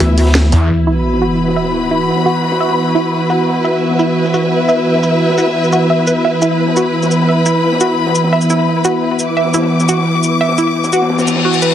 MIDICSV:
0, 0, Header, 1, 9, 480
1, 0, Start_track
1, 0, Tempo, 346821
1, 965, Time_signature, 4, 2, 24, 8
1, 16254, End_track
2, 0, Start_track
2, 0, Title_t, "String section"
2, 0, Program_c, 0, 48
2, 0, Note_on_c, 0, 64, 68
2, 0, Note_on_c, 0, 71, 84
2, 0, Note_on_c, 0, 76, 80
2, 948, Note_off_c, 0, 64, 0
2, 964, Note_off_c, 0, 71, 0
2, 965, Note_on_c, 0, 64, 67
2, 989, Note_off_c, 0, 76, 0
2, 1262, Note_on_c, 0, 71, 82
2, 1309, Note_on_c, 0, 83, 80
2, 5149, Note_on_c, 0, 76, 82
2, 5174, Note_off_c, 0, 83, 0
2, 8990, Note_on_c, 0, 83, 82
2, 9013, Note_off_c, 0, 76, 0
2, 12829, Note_on_c, 0, 86, 82
2, 12854, Note_off_c, 0, 83, 0
2, 16254, Note_off_c, 0, 64, 0
2, 16254, Note_off_c, 0, 71, 0
2, 16254, Note_off_c, 0, 86, 0
2, 16254, End_track
3, 0, Start_track
3, 0, Title_t, "Synth arpeggio sound"
3, 0, Program_c, 1, 84
3, 1204, Note_on_c, 1, 64, 75
3, 1286, Note_off_c, 1, 64, 0
3, 1684, Note_on_c, 1, 66, 77
3, 1820, Note_off_c, 1, 66, 0
3, 2164, Note_on_c, 1, 76, 75
3, 2368, Note_off_c, 1, 76, 0
3, 2644, Note_on_c, 1, 64, 77
3, 2726, Note_off_c, 1, 64, 0
3, 3124, Note_on_c, 1, 66, 76
3, 3260, Note_off_c, 1, 66, 0
3, 3604, Note_on_c, 1, 76, 76
3, 3808, Note_off_c, 1, 76, 0
3, 4084, Note_on_c, 1, 64, 76
3, 4166, Note_off_c, 1, 64, 0
3, 4564, Note_on_c, 1, 66, 77
3, 4700, Note_off_c, 1, 66, 0
3, 5045, Note_on_c, 1, 76, 76
3, 5248, Note_off_c, 1, 76, 0
3, 5524, Note_on_c, 1, 64, 79
3, 5606, Note_off_c, 1, 64, 0
3, 6004, Note_on_c, 1, 66, 77
3, 6140, Note_off_c, 1, 66, 0
3, 6484, Note_on_c, 1, 76, 79
3, 6688, Note_off_c, 1, 76, 0
3, 6965, Note_on_c, 1, 64, 73
3, 7046, Note_off_c, 1, 64, 0
3, 7445, Note_on_c, 1, 66, 77
3, 7580, Note_off_c, 1, 66, 0
3, 7925, Note_on_c, 1, 66, 76
3, 8060, Note_off_c, 1, 66, 0
3, 8164, Note_on_c, 1, 76, 72
3, 8300, Note_off_c, 1, 76, 0
3, 8404, Note_on_c, 1, 71, 75
3, 8608, Note_off_c, 1, 71, 0
3, 8644, Note_on_c, 1, 76, 84
3, 8848, Note_off_c, 1, 76, 0
3, 8884, Note_on_c, 1, 64, 75
3, 8966, Note_off_c, 1, 64, 0
3, 9365, Note_on_c, 1, 66, 78
3, 9500, Note_off_c, 1, 66, 0
3, 10084, Note_on_c, 1, 76, 72
3, 10288, Note_off_c, 1, 76, 0
3, 10325, Note_on_c, 1, 64, 75
3, 10406, Note_off_c, 1, 64, 0
3, 10804, Note_on_c, 1, 66, 77
3, 10940, Note_off_c, 1, 66, 0
3, 11524, Note_on_c, 1, 76, 84
3, 11728, Note_off_c, 1, 76, 0
3, 11765, Note_on_c, 1, 64, 76
3, 11846, Note_off_c, 1, 64, 0
3, 12244, Note_on_c, 1, 66, 76
3, 12380, Note_off_c, 1, 66, 0
3, 12964, Note_on_c, 1, 76, 77
3, 13168, Note_off_c, 1, 76, 0
3, 13204, Note_on_c, 1, 64, 78
3, 13286, Note_off_c, 1, 64, 0
3, 13684, Note_on_c, 1, 66, 76
3, 13820, Note_off_c, 1, 66, 0
3, 14404, Note_on_c, 1, 76, 83
3, 14608, Note_off_c, 1, 76, 0
3, 14644, Note_on_c, 1, 64, 76
3, 14725, Note_off_c, 1, 64, 0
3, 15124, Note_on_c, 1, 66, 76
3, 15260, Note_off_c, 1, 66, 0
3, 15844, Note_on_c, 1, 66, 74
3, 16048, Note_off_c, 1, 66, 0
3, 16084, Note_on_c, 1, 71, 77
3, 16220, Note_off_c, 1, 71, 0
3, 16254, End_track
4, 0, Start_track
4, 0, Title_t, "Analog synth pad"
4, 0, Program_c, 2, 89
4, 0, Note_on_c, 2, 52, 77
4, 0, Note_on_c, 2, 59, 72
4, 0, Note_on_c, 2, 64, 88
4, 909, Note_off_c, 2, 52, 0
4, 909, Note_off_c, 2, 59, 0
4, 949, Note_off_c, 2, 64, 0
4, 964, Note_on_c, 2, 52, 78
4, 964, Note_on_c, 2, 59, 70
4, 964, Note_on_c, 2, 66, 85
4, 8613, Note_off_c, 2, 66, 0
4, 8644, Note_on_c, 2, 64, 86
4, 16254, Note_off_c, 2, 52, 0
4, 16254, Note_off_c, 2, 59, 0
4, 16254, Note_off_c, 2, 64, 0
4, 16254, End_track
5, 0, Start_track
5, 0, Title_t, "Detuned saw bass"
5, 0, Program_c, 3, 39
5, 724, Note_on_c, 3, 40, 99
5, 945, Note_off_c, 3, 40, 0
5, 16254, End_track
6, 0, Start_track
6, 0, Title_t, "Wobble bass"
6, 0, Program_c, 4, 39
6, 4, Note_on_c, 4, 38, 97
6, 705, Note_off_c, 4, 38, 0
6, 16254, End_track
7, 0, Start_track
7, 0, Title_t, "Reverse cymbal"
7, 0, Program_c, 5, 119
7, 15364, Note_on_c, 5, 60, 75
7, 16254, Note_off_c, 5, 60, 0
7, 16254, End_track
8, 0, Start_track
8, 0, Title_t, "Sub drop"
8, 0, Program_c, 6, 103
8, 964, Note_on_c, 6, 60, 71
8, 2884, Note_off_c, 6, 60, 0
8, 16254, End_track
9, 0, Start_track
9, 0, Title_t, "Drums"
9, 4, Note_on_c, 9, 42, 99
9, 13, Note_off_c, 9, 42, 0
9, 13, Note_on_c, 9, 42, 63
9, 151, Note_off_c, 9, 42, 0
9, 241, Note_on_c, 9, 46, 69
9, 244, Note_on_c, 9, 42, 69
9, 354, Note_on_c, 9, 38, 44
9, 379, Note_off_c, 9, 46, 0
9, 382, Note_off_c, 9, 42, 0
9, 483, Note_off_c, 9, 38, 0
9, 483, Note_on_c, 9, 38, 116
9, 483, Note_on_c, 9, 42, 97
9, 485, Note_off_c, 9, 38, 0
9, 485, Note_on_c, 9, 38, 112
9, 489, Note_off_c, 9, 42, 0
9, 489, Note_on_c, 9, 42, 93
9, 623, Note_off_c, 9, 38, 0
9, 627, Note_off_c, 9, 42, 0
9, 724, Note_on_c, 9, 42, 72
9, 726, Note_off_c, 9, 42, 0
9, 726, Note_on_c, 9, 42, 71
9, 865, Note_off_c, 9, 42, 0
9, 957, Note_on_c, 9, 42, 76
9, 1095, Note_off_c, 9, 42, 0
9, 1204, Note_on_c, 9, 69, 57
9, 1343, Note_off_c, 9, 69, 0
9, 1444, Note_on_c, 9, 42, 84
9, 1568, Note_on_c, 9, 38, 38
9, 1583, Note_off_c, 9, 42, 0
9, 1682, Note_on_c, 9, 42, 68
9, 1684, Note_on_c, 9, 69, 56
9, 1706, Note_off_c, 9, 38, 0
9, 1821, Note_off_c, 9, 42, 0
9, 1822, Note_off_c, 9, 69, 0
9, 1930, Note_on_c, 9, 46, 78
9, 2044, Note_on_c, 9, 69, 26
9, 2049, Note_on_c, 9, 38, 49
9, 2068, Note_off_c, 9, 46, 0
9, 2164, Note_off_c, 9, 69, 0
9, 2164, Note_on_c, 9, 42, 62
9, 2164, Note_on_c, 9, 69, 58
9, 2187, Note_off_c, 9, 38, 0
9, 2272, Note_on_c, 9, 38, 39
9, 2303, Note_off_c, 9, 42, 0
9, 2303, Note_off_c, 9, 69, 0
9, 2411, Note_off_c, 9, 38, 0
9, 2411, Note_on_c, 9, 42, 86
9, 2549, Note_off_c, 9, 42, 0
9, 2644, Note_on_c, 9, 69, 55
9, 2782, Note_off_c, 9, 69, 0
9, 2887, Note_on_c, 9, 42, 79
9, 3000, Note_on_c, 9, 38, 48
9, 3025, Note_off_c, 9, 42, 0
9, 3124, Note_on_c, 9, 69, 54
9, 3129, Note_on_c, 9, 42, 70
9, 3138, Note_off_c, 9, 38, 0
9, 3262, Note_off_c, 9, 69, 0
9, 3268, Note_off_c, 9, 42, 0
9, 3353, Note_on_c, 9, 42, 95
9, 3482, Note_on_c, 9, 38, 52
9, 3491, Note_off_c, 9, 42, 0
9, 3604, Note_on_c, 9, 69, 55
9, 3621, Note_off_c, 9, 38, 0
9, 3725, Note_on_c, 9, 38, 47
9, 3743, Note_off_c, 9, 69, 0
9, 3835, Note_on_c, 9, 42, 85
9, 3863, Note_off_c, 9, 38, 0
9, 3964, Note_on_c, 9, 69, 25
9, 3974, Note_off_c, 9, 42, 0
9, 4077, Note_on_c, 9, 38, 50
9, 4084, Note_off_c, 9, 69, 0
9, 4084, Note_on_c, 9, 69, 55
9, 4216, Note_off_c, 9, 38, 0
9, 4222, Note_off_c, 9, 69, 0
9, 4331, Note_on_c, 9, 42, 81
9, 4470, Note_off_c, 9, 42, 0
9, 4564, Note_on_c, 9, 42, 60
9, 4564, Note_on_c, 9, 69, 55
9, 4702, Note_off_c, 9, 42, 0
9, 4702, Note_off_c, 9, 69, 0
9, 4796, Note_on_c, 9, 42, 82
9, 4934, Note_off_c, 9, 42, 0
9, 5044, Note_on_c, 9, 69, 54
9, 5046, Note_on_c, 9, 42, 66
9, 5183, Note_off_c, 9, 69, 0
9, 5185, Note_off_c, 9, 42, 0
9, 5276, Note_on_c, 9, 42, 80
9, 5409, Note_on_c, 9, 38, 42
9, 5415, Note_off_c, 9, 42, 0
9, 5522, Note_on_c, 9, 42, 66
9, 5524, Note_on_c, 9, 69, 52
9, 5547, Note_off_c, 9, 38, 0
9, 5660, Note_off_c, 9, 42, 0
9, 5662, Note_off_c, 9, 69, 0
9, 5763, Note_on_c, 9, 46, 73
9, 5878, Note_on_c, 9, 38, 50
9, 5884, Note_on_c, 9, 69, 25
9, 5902, Note_off_c, 9, 46, 0
9, 6004, Note_off_c, 9, 69, 0
9, 6004, Note_on_c, 9, 69, 54
9, 6017, Note_off_c, 9, 38, 0
9, 6126, Note_on_c, 9, 38, 46
9, 6142, Note_off_c, 9, 69, 0
9, 6242, Note_on_c, 9, 42, 75
9, 6265, Note_off_c, 9, 38, 0
9, 6380, Note_off_c, 9, 42, 0
9, 6484, Note_on_c, 9, 69, 55
9, 6622, Note_off_c, 9, 69, 0
9, 6720, Note_on_c, 9, 42, 77
9, 6853, Note_on_c, 9, 38, 55
9, 6858, Note_off_c, 9, 42, 0
9, 6964, Note_on_c, 9, 69, 54
9, 6971, Note_on_c, 9, 42, 59
9, 6992, Note_off_c, 9, 38, 0
9, 7103, Note_off_c, 9, 69, 0
9, 7110, Note_off_c, 9, 42, 0
9, 7206, Note_on_c, 9, 42, 81
9, 7327, Note_on_c, 9, 38, 51
9, 7344, Note_off_c, 9, 42, 0
9, 7445, Note_on_c, 9, 69, 54
9, 7453, Note_on_c, 9, 42, 60
9, 7465, Note_off_c, 9, 38, 0
9, 7563, Note_on_c, 9, 38, 55
9, 7583, Note_off_c, 9, 69, 0
9, 7591, Note_off_c, 9, 42, 0
9, 7690, Note_on_c, 9, 42, 79
9, 7701, Note_off_c, 9, 38, 0
9, 7804, Note_on_c, 9, 69, 26
9, 7828, Note_off_c, 9, 42, 0
9, 7925, Note_off_c, 9, 69, 0
9, 7925, Note_on_c, 9, 69, 55
9, 7927, Note_on_c, 9, 38, 51
9, 8063, Note_off_c, 9, 69, 0
9, 8065, Note_off_c, 9, 38, 0
9, 8168, Note_on_c, 9, 42, 82
9, 8306, Note_off_c, 9, 42, 0
9, 8405, Note_on_c, 9, 69, 57
9, 8414, Note_on_c, 9, 42, 68
9, 8543, Note_off_c, 9, 69, 0
9, 8552, Note_off_c, 9, 42, 0
9, 8648, Note_on_c, 9, 42, 86
9, 8786, Note_off_c, 9, 42, 0
9, 8875, Note_on_c, 9, 42, 63
9, 8885, Note_on_c, 9, 69, 55
9, 9001, Note_off_c, 9, 42, 0
9, 9001, Note_on_c, 9, 42, 44
9, 9023, Note_off_c, 9, 69, 0
9, 9126, Note_off_c, 9, 42, 0
9, 9126, Note_on_c, 9, 42, 84
9, 9231, Note_on_c, 9, 38, 44
9, 9264, Note_off_c, 9, 42, 0
9, 9361, Note_on_c, 9, 42, 61
9, 9364, Note_on_c, 9, 69, 57
9, 9369, Note_off_c, 9, 38, 0
9, 9499, Note_off_c, 9, 42, 0
9, 9503, Note_off_c, 9, 69, 0
9, 9612, Note_on_c, 9, 46, 76
9, 9725, Note_on_c, 9, 69, 26
9, 9728, Note_on_c, 9, 38, 50
9, 9751, Note_off_c, 9, 46, 0
9, 9845, Note_off_c, 9, 69, 0
9, 9845, Note_on_c, 9, 69, 57
9, 9854, Note_on_c, 9, 42, 63
9, 9867, Note_off_c, 9, 38, 0
9, 9962, Note_on_c, 9, 38, 45
9, 9983, Note_off_c, 9, 69, 0
9, 9993, Note_off_c, 9, 42, 0
9, 10083, Note_on_c, 9, 42, 92
9, 10100, Note_off_c, 9, 38, 0
9, 10221, Note_off_c, 9, 42, 0
9, 10325, Note_on_c, 9, 69, 57
9, 10330, Note_on_c, 9, 42, 60
9, 10463, Note_off_c, 9, 69, 0
9, 10468, Note_off_c, 9, 42, 0
9, 10563, Note_on_c, 9, 42, 81
9, 10687, Note_on_c, 9, 38, 52
9, 10701, Note_off_c, 9, 42, 0
9, 10804, Note_on_c, 9, 69, 60
9, 10826, Note_off_c, 9, 38, 0
9, 10943, Note_off_c, 9, 69, 0
9, 11048, Note_on_c, 9, 42, 81
9, 11162, Note_on_c, 9, 38, 54
9, 11186, Note_off_c, 9, 42, 0
9, 11279, Note_on_c, 9, 42, 60
9, 11284, Note_on_c, 9, 69, 58
9, 11300, Note_off_c, 9, 38, 0
9, 11401, Note_on_c, 9, 38, 55
9, 11417, Note_off_c, 9, 42, 0
9, 11423, Note_off_c, 9, 69, 0
9, 11520, Note_on_c, 9, 42, 82
9, 11539, Note_off_c, 9, 38, 0
9, 11644, Note_on_c, 9, 69, 28
9, 11659, Note_off_c, 9, 42, 0
9, 11764, Note_off_c, 9, 69, 0
9, 11764, Note_on_c, 9, 42, 71
9, 11764, Note_on_c, 9, 69, 58
9, 11766, Note_on_c, 9, 38, 45
9, 11902, Note_off_c, 9, 42, 0
9, 11903, Note_off_c, 9, 69, 0
9, 11905, Note_off_c, 9, 38, 0
9, 12020, Note_on_c, 9, 42, 78
9, 12159, Note_off_c, 9, 42, 0
9, 12245, Note_on_c, 9, 69, 62
9, 12383, Note_off_c, 9, 69, 0
9, 12486, Note_on_c, 9, 42, 84
9, 12624, Note_off_c, 9, 42, 0
9, 12723, Note_on_c, 9, 42, 68
9, 12724, Note_on_c, 9, 69, 59
9, 12851, Note_off_c, 9, 42, 0
9, 12851, Note_on_c, 9, 42, 41
9, 12863, Note_off_c, 9, 69, 0
9, 12965, Note_off_c, 9, 42, 0
9, 12965, Note_on_c, 9, 42, 81
9, 13070, Note_on_c, 9, 38, 37
9, 13104, Note_off_c, 9, 42, 0
9, 13204, Note_on_c, 9, 69, 60
9, 13208, Note_off_c, 9, 38, 0
9, 13208, Note_on_c, 9, 42, 61
9, 13210, Note_on_c, 9, 38, 88
9, 13256, Note_off_c, 9, 38, 0
9, 13256, Note_off_c, 9, 42, 0
9, 13256, Note_on_c, 9, 38, 80
9, 13256, Note_on_c, 9, 42, 67
9, 13323, Note_off_c, 9, 42, 0
9, 13323, Note_on_c, 9, 42, 78
9, 13324, Note_off_c, 9, 38, 0
9, 13324, Note_on_c, 9, 38, 88
9, 13342, Note_off_c, 9, 69, 0
9, 13441, Note_on_c, 9, 46, 73
9, 13461, Note_off_c, 9, 42, 0
9, 13462, Note_off_c, 9, 38, 0
9, 13564, Note_on_c, 9, 69, 28
9, 13567, Note_on_c, 9, 38, 52
9, 13579, Note_off_c, 9, 46, 0
9, 13684, Note_off_c, 9, 69, 0
9, 13684, Note_on_c, 9, 69, 62
9, 13685, Note_on_c, 9, 42, 72
9, 13705, Note_off_c, 9, 38, 0
9, 13808, Note_on_c, 9, 38, 43
9, 13823, Note_off_c, 9, 42, 0
9, 13823, Note_off_c, 9, 69, 0
9, 13932, Note_on_c, 9, 42, 85
9, 13947, Note_off_c, 9, 38, 0
9, 14070, Note_off_c, 9, 42, 0
9, 14164, Note_on_c, 9, 69, 61
9, 14174, Note_on_c, 9, 42, 73
9, 14303, Note_off_c, 9, 69, 0
9, 14313, Note_off_c, 9, 42, 0
9, 14411, Note_on_c, 9, 42, 85
9, 14516, Note_on_c, 9, 38, 52
9, 14550, Note_off_c, 9, 42, 0
9, 14640, Note_on_c, 9, 42, 64
9, 14644, Note_on_c, 9, 69, 59
9, 14654, Note_off_c, 9, 38, 0
9, 14779, Note_off_c, 9, 42, 0
9, 14782, Note_off_c, 9, 69, 0
9, 14886, Note_on_c, 9, 42, 92
9, 15001, Note_on_c, 9, 38, 55
9, 15003, Note_on_c, 9, 69, 28
9, 15024, Note_off_c, 9, 42, 0
9, 15124, Note_off_c, 9, 69, 0
9, 15124, Note_on_c, 9, 42, 60
9, 15124, Note_on_c, 9, 69, 59
9, 15140, Note_off_c, 9, 38, 0
9, 15249, Note_on_c, 9, 38, 57
9, 15262, Note_off_c, 9, 69, 0
9, 15263, Note_off_c, 9, 42, 0
9, 15361, Note_off_c, 9, 38, 0
9, 15361, Note_on_c, 9, 38, 93
9, 15372, Note_on_c, 9, 42, 71
9, 15479, Note_off_c, 9, 38, 0
9, 15479, Note_on_c, 9, 38, 110
9, 15483, Note_off_c, 9, 42, 0
9, 15483, Note_on_c, 9, 42, 75
9, 15484, Note_on_c, 9, 69, 28
9, 15601, Note_off_c, 9, 42, 0
9, 15601, Note_on_c, 9, 42, 74
9, 15602, Note_off_c, 9, 38, 0
9, 15602, Note_on_c, 9, 38, 113
9, 15604, Note_off_c, 9, 69, 0
9, 15604, Note_on_c, 9, 69, 60
9, 15718, Note_off_c, 9, 38, 0
9, 15718, Note_on_c, 9, 38, 87
9, 15729, Note_off_c, 9, 42, 0
9, 15729, Note_on_c, 9, 42, 72
9, 15742, Note_off_c, 9, 69, 0
9, 15837, Note_off_c, 9, 42, 0
9, 15837, Note_on_c, 9, 42, 63
9, 15856, Note_off_c, 9, 38, 0
9, 15958, Note_off_c, 9, 42, 0
9, 15958, Note_on_c, 9, 42, 82
9, 15964, Note_on_c, 9, 69, 27
9, 16084, Note_off_c, 9, 69, 0
9, 16084, Note_on_c, 9, 69, 60
9, 16096, Note_off_c, 9, 42, 0
9, 16201, Note_on_c, 9, 42, 55
9, 16222, Note_off_c, 9, 69, 0
9, 16254, Note_off_c, 9, 42, 0
9, 16254, End_track
0, 0, End_of_file